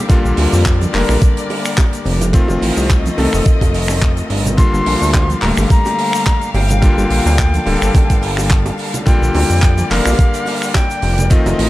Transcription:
Already playing: string section A#3 G4
0.09 analog synth bass A#1, electric grand piano D3 G3 A#3 F4, string section D5, kick, closed hi-hat, high bongo, cabasa, shaker
0.25 analog synth bass A#1, cabasa, shaker
0.37 analog synth bass D2, open hi-hat, high bongo, cabasa
0.53 analog synth bass F2, cabasa, shaker
0.66 kick, clap, cabasa, shaker
0.81 closed hi-hat, high bongo, high conga, cabasa, shaker
0.93 analog synth bass F1, electric grand piano D3 G3 A#3 A#4, clap, open hi-hat, cabasa
1.09 analog synth bass A#1, finger snap, high bongo, cabasa, shaker
1.22 kick, closed hi-hat, cabasa, shaker
1.37 closed hi-hat, cabasa, shaker
1.50 open hi-hat, high bongo, cabasa
1.65 finger snap, cabasa, shaker
1.78 kick, clap, high bongo, cabasa, shaker
1.93 closed hi-hat, cabasa, shaker
2.05 analog synth bass F1, open hi-hat, cabasa
2.21 closed hi-hat, high bongo, low conga, cabasa, shaker
2.33 electric grand piano D#3 A3 C4 F4, string section A3 F4 D#5, kick, closed hi-hat, cabasa, shaker
2.48 analog synth bass F1, high bongo, cabasa, shaker
2.62 analog synth bass A1, open hi-hat, cabasa
2.77 analog synth bass C2, cabasa, shaker
2.90 kick, clap, high bongo, cabasa, shaker
3.06 closed hi-hat, high conga, cabasa, shaker
3.17 analog synth bass C2, electric grand piano D#3 A3 C4 A4, open hi-hat, high bongo, cabasa
3.33 analog synth bass F1, finger snap, cabasa, shaker
3.45 kick, closed hi-hat, cabasa, shaker
3.61 analog synth bass F1, kick, closed hi-hat, high bongo, cabasa, shaker
3.74 open hi-hat, cabasa
3.88 finger snap, high bongo, cabasa, shaker
4.01 kick, clap, cabasa, shaker
4.17 closed hi-hat, cabasa, shaker
4.30 analog synth bass G1, open hi-hat, high bongo, cabasa
4.45 closed hi-hat, low conga, cabasa, shaker
4.57 electric grand piano D3 G3 A#3 F4, string section G3 G4 F5, flute C6, kick, closed hi-hat, cabasa, shaker
4.73 analog synth bass G1, cabasa, shaker
4.86 analog synth bass A#1, open hi-hat, high bongo, cabasa
5.01 analog synth bass D2, cabasa, shaker
5.14 kick, clap, closed hi-hat, high bongo, cabasa, shaker
5.29 closed hi-hat, high conga, cabasa, shaker
5.42 analog synth bass D1, electric grand piano D3 G3 A3 A#3, flute A#5, clap, open hi-hat, cabasa
5.57 analog synth bass G1, finger snap, high bongo, cabasa, shaker
5.70 flute A#5, kick, closed hi-hat, cabasa, shaker
5.86 closed hi-hat, high bongo, cabasa, shaker
5.99 open hi-hat, cabasa
6.13 finger snap, cabasa, shaker
6.26 kick, clap, high bongo, cabasa, shaker
6.42 closed hi-hat, cabasa, shaker
6.54 analog synth bass G1, flute G5, open hi-hat, high bongo, cabasa
6.68 closed hi-hat, low conga, cabasa, shaker
6.82 electric grand piano D3 G3 A#3 F4, string section A4, kick, closed hi-hat, cabasa, shaker
6.97 analog synth bass G1, high bongo, cabasa, shaker
7.10 analog synth bass A#1, open hi-hat, cabasa
7.26 analog synth bass D2, high bongo, cabasa, shaker
7.38 kick, clap, cabasa, shaker
7.53 closed hi-hat, high conga, cabasa, shaker
7.65 analog synth bass D1, electric grand piano D3 G3 A#3 A4, open hi-hat, high bongo, cabasa
7.82 analog synth bass G1, finger snap, cabasa, shaker
7.94 kick, closed hi-hat, high bongo, cabasa, shaker
8.10 analog synth bass G1, kick, closed hi-hat, cabasa, shaker
8.22 open hi-hat, cabasa
8.37 finger snap, high bongo, cabasa, shaker
8.50 kick, clap, closed hi-hat, cabasa, shaker
8.66 closed hi-hat, high bongo, cabasa, shaker
8.78 open hi-hat, cabasa
8.94 closed hi-hat, low conga, cabasa, shaker
9.06 analog synth bass A#1, electric grand piano D3 G3 A#3 F4, string section G4 D5, flute G5, kick, closed hi-hat, high bongo, cabasa, shaker
9.22 analog synth bass A#1, cabasa, shaker
9.35 analog synth bass D2, open hi-hat, high bongo, cabasa
9.49 analog synth bass F2, cabasa, shaker
9.62 kick, clap, closed hi-hat, cabasa, shaker
9.77 closed hi-hat, high bongo, high conga, cabasa, shaker
9.90 analog synth bass F1, electric grand piano D3 G3 A#3 A#4, flute F5, clap, open hi-hat, cabasa
10.05 analog synth bass A#1, finger snap, high bongo, cabasa, shaker
10.19 kick, closed hi-hat, cabasa, shaker
10.34 closed hi-hat, cabasa, shaker
10.46 open hi-hat, high bongo, cabasa
10.62 finger snap, cabasa, shaker
10.74 flute G5, kick, clap, high bongo, cabasa, shaker
10.90 closed hi-hat, cabasa, shaker
11.02 analog synth bass F1, open hi-hat, cabasa
11.18 closed hi-hat, high bongo, low conga, cabasa, shaker
11.30 electric grand piano D#3 A3 C4 F4, string section A3 F4 D#5, flute D#5, kick, closed hi-hat, cabasa, shaker
11.46 analog synth bass F1, closed hi-hat, high bongo, cabasa, shaker
11.59 analog synth bass A1, open hi-hat, cabasa

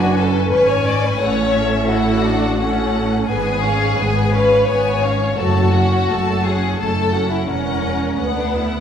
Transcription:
Already playing: double bass section F#1, cello section F#2, viola section D4 B4, violin section F#4 G#5
0.17 viola section C#4, violin section A4
0.50 double bass section G#1, cello section G#2, violin section B4 G#5, viola section C#5
0.68 violin section C#5
0.87 violin section D5
1.04 violin section B4
1.20 double bass section A1, cello section A2, viola section C#4 A4, violin section C#5 F#5
1.55 violin section E5
1.88 viola section E4, violin section F#4 F#5
2.25 viola section D4
2.59 viola section C#4 A4, violin section F#5
3.27 double bass section G#1, cello section G#2, viola section B3 B4, violin section G#4 G#5
3.64 viola section C#4 C#5, violin section F5
3.99 double bass section G#1, cello section G#2, viola section B3 B4, violin section G#5
4.33 viola section C#4 C#5, violin section B4 F5
4.67 double bass section G#1, cello section G#2, viola section B3 B4, violin section C#5 G#5
5.02 viola section C#4 C#5, violin section F5
5.37 double bass section F#1, cello section F#2, viola section A3 A4, violin section F#4 A5
5.73 viola section C#4 F#4, violin section F#5
6.10 double bass section F#1, cello section F#2, viola section A3 A4, violin section A5
6.44 viola section C#4 F#4, violin section G#4 F#5
6.79 double bass section F#1, cello section F#2, viola section A3 A4, violin section A4 A5
7.13 viola section C#4 F#4, violin section F#5
7.30 violin section E4
7.47 double bass section E1, cello section E2, violin section C#4 F#5, viola section C#4 A#4
8.18 cello section D2, double bass section D2, viola section B3 B4, violin section F#5
8.36 violin section D4
8.54 violin section E4

